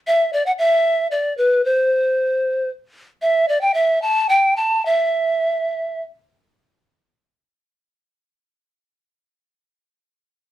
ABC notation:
X:1
M:6/8
L:1/16
Q:3/8=71
K:Em
V:1 name="Pan flute"
e2 d f e4 d2 B2 | c8 z4 | e2 d g e2 a2 g2 a2 | e8 z4 |
z12 | z12 |]